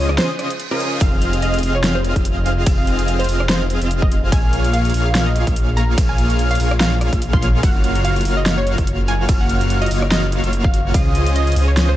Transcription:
Already playing: detuned saw bass C#2, supersaw synth C#4 F4 G#4 C5 D#5, synth pluck C#5, digital synth lead D#6
0.09 cross-stick
0.18 synth pluck C5, snare, closed hi-hat, reverse cymbal
0.39 cross-stick, closed hi-hat
0.50 closed hi-hat
0.60 closed hi-hat
0.71 supersaw synth C#4 F4 G#4 C5 D#5, synth pluck A#4, digital synth lead D#6
0.80 closed hi-hat
1.01 detuned saw bass F1, supersaw synth C4 G#4 D#5, synth pluck F5, digital synth lead F6, kick, closed hi-hat, ride
1.22 closed hi-hat
1.33 closed hi-hat
1.42 synth pluck D#5, closed hi-hat
1.54 closed hi-hat
1.59 closed hi-hat
1.63 detuned saw bass F1, supersaw synth C4 F4 G#4 D#5 F5, digital synth lead F6, open hi-hat
1.75 synth pluck C#5
1.84 snare, closed hi-hat
1.95 synth pluck C5
2.04 closed hi-hat
2.16 detuned saw bass F1, supersaw synth C4 F4 G#4 D#5 F5, digital synth lead F6, kick, closed hi-hat
2.25 closed hi-hat
2.46 synth pluck F5, closed hi-hat
2.66 detuned saw bass F1, digital synth lead F6, kick, closed hi-hat, ride
2.78 synth pluck F5
2.87 closed hi-hat
2.99 closed hi-hat
3.08 closed hi-hat
3.19 synth pluck C5, closed hi-hat
3.24 closed hi-hat
3.28 detuned saw bass F1, supersaw synth C4 F4 G#4 D#5 F5, digital synth lead F6, open hi-hat
3.40 cross-stick
3.49 synth pluck C5, snare, closed hi-hat
3.70 closed hi-hat
3.81 detuned saw bass F1, supersaw synth C4 F4 G#4 D#5 F5, digital synth lead F6, closed hi-hat
3.91 closed hi-hat
4.02 synth pluck D#5, kick
4.12 closed hi-hat
4.32 detuned saw bass A#1, supersaw synth A#3 F4 G#4 C#5, synth pluck G#5, digital synth lead F6, kick, closed hi-hat, ride
4.53 closed hi-hat
4.64 closed hi-hat
4.73 synth pluck F5, closed hi-hat
4.85 closed hi-hat
4.90 closed hi-hat
4.94 detuned saw bass A#1, supersaw synth A#3 F4 G#4 C#5 F5, digital synth lead F6, open hi-hat
5.06 synth pluck F5
5.15 snare, closed hi-hat
5.26 synth pluck D#5
5.36 closed hi-hat
5.47 detuned saw bass A#1, supersaw synth A#3 C#5, digital synth lead F6, kick, closed hi-hat
5.56 closed hi-hat
5.77 synth pluck A#5, closed hi-hat
5.98 detuned saw bass A#1, supersaw synth C#5, digital synth lead F6, kick, closed hi-hat, ride
6.09 synth pluck G#5
6.18 closed hi-hat
6.30 closed hi-hat
6.39 closed hi-hat
6.51 synth pluck F5, closed hi-hat
6.55 closed hi-hat
6.60 detuned saw bass A#1, supersaw synth A#3 F4 G#4 C#5 F5, digital synth lead F6, open hi-hat
6.71 cross-stick
6.80 synth pluck F5, snare, closed hi-hat
7.01 cross-stick, closed hi-hat
7.12 detuned saw bass A#1, supersaw synth A#3 F4 C#5 F5, digital synth lead F6, kick, closed hi-hat
7.22 closed hi-hat
7.33 synth pluck C6, kick
7.42 closed hi-hat
7.63 detuned saw bass F#1, supersaw synth F4 F#4 C#5 F5, synth pluck F#5, digital synth lead F6, kick, closed hi-hat, ride
7.84 closed hi-hat
7.95 closed hi-hat
8.05 synth pluck F5, closed hi-hat
8.16 closed hi-hat
8.21 closed hi-hat
8.25 detuned saw bass F#1, supersaw synth A#3 F4 F#4 C#5 F5, digital synth lead F6, open hi-hat
8.37 synth pluck D#5
8.46 snare, closed hi-hat
8.58 synth pluck C#5
8.67 closed hi-hat
8.78 detuned saw bass F#1, kick, closed hi-hat
8.87 closed hi-hat
9.08 synth pluck G#5, closed hi-hat
9.29 detuned saw bass F#1, supersaw synth A#3 F4 F#4 C#5 F5, digital synth lead F6, kick, closed hi-hat, ride
9.41 synth pluck F#5
9.49 closed hi-hat
9.61 closed hi-hat
9.70 closed hi-hat
9.82 synth pluck D#5, closed hi-hat
9.86 closed hi-hat
9.91 detuned saw bass F#1, supersaw synth A#3 F4 F#4 C#5 F5, digital synth lead F6, open hi-hat
10.02 cross-stick
10.12 synth pluck D#5, snare, closed hi-hat
10.32 closed hi-hat
10.44 detuned saw bass F#1, supersaw synth A#3 F4 F#4 C#5 F5, digital synth lead F6, closed hi-hat
10.53 closed hi-hat
10.64 synth pluck F5, kick
10.74 closed hi-hat
10.94 detuned saw bass C#2, supersaw synth F4 G#4 C5 D#5, synth pluck F5, digital synth lead D#6, kick, closed hi-hat, ride
11.15 closed hi-hat
11.26 closed hi-hat
11.36 synth pluck D#5, closed hi-hat
11.47 closed hi-hat
11.52 closed hi-hat
11.56 detuned saw bass C#2, supersaw synth C#4 F4 G#4 C5 D#5, digital synth lead D#6, open hi-hat
11.68 synth pluck C#5
11.77 snare, closed hi-hat
11.89 synth pluck C5

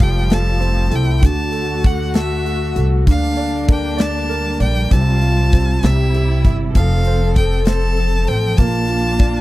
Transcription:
Already playing: upright bass F1, grand piano F3 A4, string section F3 G3 A3, french horn section F4
0.00 grand piano G4, violin G5, kick, closed hi-hat
0.30 grand piano A4, snare, closed hi-hat
0.34 violin A5
0.60 grand piano C4, closed hi-hat
0.90 upright bass C2, french horn section E4, grand piano A4, closed hi-hat
0.95 violin G5
1.21 upright bass D2, grand piano D3, string section D3 F#4, french horn section F#4, violin A5, kick, closed hi-hat
1.52 grand piano A4, closed hi-hat
1.84 grand piano F#4, violin F#5, kick, closed hi-hat
2.14 grand piano A4, violin E5, snare, closed hi-hat
2.46 grand piano F#4, closed hi-hat
2.76 upright bass C2, grand piano A4, closed hi-hat
3.06 upright bass D2, grand piano D3, string section G3 A#3 D4, french horn section D4, violin F5, kick, closed hi-hat
3.36 grand piano D5, closed hi-hat
3.68 grand piano A#4, violin G5, kick, closed hi-hat
3.97 grand piano D5, snare, closed hi-hat
4.02 violin A5
4.29 grand piano A#4, closed hi-hat
4.60 upright bass A#1, grand piano D5, violin G5, closed hi-hat
4.90 upright bass C2, string section C3 F4, grand piano C3, french horn section F4, violin A5, kick, closed hi-hat
5.21 grand piano F4, closed hi-hat
5.53 grand piano C4, kick, closed hi-hat
5.80 upright bass C2, string section C3 E4, grand piano C3, french horn section G4, violin E5, closed hi-hat
5.84 snare
6.14 grand piano G4, closed hi-hat
6.45 upright bass G1, grand piano E4, kick, closed hi-hat
6.73 upright bass F1, string section F3 C4 A4, grand piano F3, french horn section A4, violin F5, kick, closed hi-hat
7.05 grand piano C5, closed hi-hat
7.36 grand piano A4, violin G5, kick, closed hi-hat
7.65 grand piano C5, violin A5, snare, closed hi-hat
7.97 grand piano A4, closed hi-hat
8.27 upright bass A1, grand piano C5, violin G5, closed hi-hat
8.57 upright bass A#1, string section A#3 D4, grand piano A#3, french horn section F4, violin A5, kick, closed hi-hat
8.88 grand piano F4, closed hi-hat
9.19 grand piano D5, kick, closed hi-hat

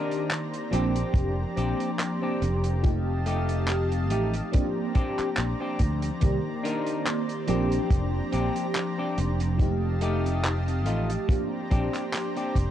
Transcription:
Already playing: fm electric piano D#3 A#3 C4 G4 D5, analog synth pad D#3 C5 D5 A#5, clean electric guitar D4 D#4 A#4
0.11 closed hi-hat
0.31 clap, closed hi-hat
0.54 closed hi-hat
0.71 fretless electric bass A#1, fm electric piano F3 A#3 C4 D4 G4, clean electric guitar C4 D4 G4, analog synth pad G4 D5, closed hi-hat
0.96 closed hi-hat
1.14 fretless electric bass F1, kick, closed hi-hat
1.57 fretless electric bass A#1, clean electric guitar C4 D4 G4, closed hi-hat
1.80 closed hi-hat
1.99 clap, closed hi-hat
2.22 clean electric guitar C4 D4 G4
2.42 fretless electric bass F1, closed hi-hat
2.64 muted clean electric guitar stroke, closed hi-hat
2.83 fm electric piano F3 A3 C4 D#4 G4, analog synth pad D#5 F5 A5, kick, closed hi-hat
3.26 clean electric guitar A3 D#4 G4, closed hi-hat
3.49 closed hi-hat
3.68 clap, closed hi-hat
3.92 closed hi-hat
4.10 fretless electric bass A1, clean electric guitar A3 D#4 G4, closed hi-hat
4.33 closed hi-hat
4.52 fm electric piano F3 A#3 C4 D4 G4, analog synth pad G4 C5 D5 A#5, muted clean electric guitar stroke, kick, closed hi-hat
4.95 clean electric guitar C4 D4 G4, kick, closed hi-hat
5.18 muted fretless electric bass stroke, clap, closed hi-hat
5.37 fretless electric bass A#1, clap, closed hi-hat
5.60 clean electric guitar C4 D4 G4
5.79 fretless electric bass D2, kick, closed hi-hat
6.02 muted clean electric guitar stroke, closed hi-hat
6.20 fretless electric bass C2, fm electric piano D#3 A#3 C4 G4 D5, analog synth pad D#3, kick, closed hi-hat
6.63 clean electric guitar D4 D#4 A#4, closed hi-hat
6.87 closed hi-hat
7.06 clap, closed hi-hat
7.29 closed hi-hat
7.47 fretless electric bass A#1, fm electric piano F3 A#3 C4 D4 G4, clean electric guitar C4 D4 G4, analog synth pad G4 A#5, closed hi-hat
7.72 closed hi-hat
7.91 fretless electric bass F1, kick, closed hi-hat
8.32 fretless electric bass A#1, clean electric guitar C4 D4 G4, closed hi-hat
8.56 closed hi-hat
8.75 clap, closed hi-hat
8.98 clean electric guitar C4 D4 G4
9.18 fretless electric bass F1, closed hi-hat
9.40 muted clean electric guitar stroke, closed hi-hat
9.58 fm electric piano F3 A3 C4 D#4 G4, analog synth pad G4 D#5 F5 A5, kick, closed hi-hat
10.01 clean electric guitar A3 D#4 G4, closed hi-hat
10.26 closed hi-hat
10.44 clap, closed hi-hat
10.68 closed hi-hat
10.86 fretless electric bass A1, clean electric guitar A3 D#4 F4, closed hi-hat
11.10 closed hi-hat
11.28 fm electric piano F3 A#3 C4 D4 G4, analog synth pad G4 C5 D5 A#5, muted clean electric guitar stroke, kick, closed hi-hat
11.70 fretless electric bass A#1, clean electric guitar C4 D4 G4, kick, closed hi-hat
11.94 clap, closed hi-hat
12.14 clap, closed hi-hat
12.36 clean electric guitar C4 D4 G4, closed hi-hat
12.55 fretless electric bass F1, kick, closed hi-hat

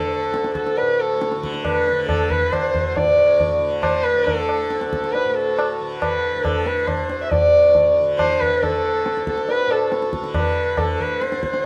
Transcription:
Already playing: tanpura D2 A2 D3, sarangi A4
0.25 tanpura D2
0.34 tabla te
0.44 tabla te
0.55 sarangi A4, tabla ke
0.66 tabla te
0.77 sarangi B4, tabla tin
0.81 tanpura A2
1.00 sarangi A4
1.21 tabla te
1.32 tabla te
1.36 tanpura D3
1.44 tabla ke
1.54 tabla te
1.65 sarangi B4, tabla na, tabla ge
1.87 tabla te
1.92 tanpura D3
2.09 sarangi A4, tabla na, tabla ge
2.30 sarangi B4, tabla ge
2.47 tanpura D2
2.52 sarangi C5, tabla na, tabla ge
2.75 tabla ge
2.96 sarangi D5, tabla tin, tabla ge
3.03 tanpura A2
3.40 tabla tin, tabla ge
3.59 tanpura D3
3.83 sarangi C5, tabla na, tabla ge
4.03 sarangi B4
4.14 tanpura D3
4.24 sarangi A4, tabla tin, tabla ge
4.49 tabla na
4.69 tanpura D2, tabla te
4.81 tabla te
4.89 sarangi A4, tabla ke
5.04 tabla te
5.11 sarangi B4, tabla tin
5.25 tanpura A2
5.29 sarangi B4
5.34 sarangi A4
5.59 tabla na
5.80 tanpura D3
6.00 sarangi B4, tabla na, tabla ge
6.35 tanpura D3
6.44 sarangi A4, tabla na, tabla ge
6.66 sarangi B4, tabla te
6.87 tanpura D2, sarangi C5, tabla na, tabla ge
7.10 tabla te
7.23 sarangi E5
7.31 sarangi D5, tabla tin, tabla ge
7.46 tanpura A2
7.75 tabla tin, tabla ge
8.01 tanpura D3
8.19 sarangi C5, tabla na, tabla ge
8.40 sarangi B4, tabla ge
8.57 tanpura D3
8.63 sarangi A4, tabla tin, tabla ge
9.06 tabla te
9.12 tanpura D2
9.17 tabla te
9.27 sarangi A4, tabla ke
9.38 tabla te
9.49 sarangi B4, tabla tin
9.67 tanpura A2, tabla na
9.71 sarangi A4
9.92 tabla te
10.02 tabla te
10.13 tabla ke
10.21 tanpura D3, tabla te
10.34 sarangi B4, tabla na, tabla ge
10.77 tanpura D3, sarangi A4, tabla na, tabla ge
11.00 sarangi B4, tabla ge
11.21 sarangi C5, tabla te
11.31 tanpura D2, tabla te
11.43 tabla ke
11.54 tabla te

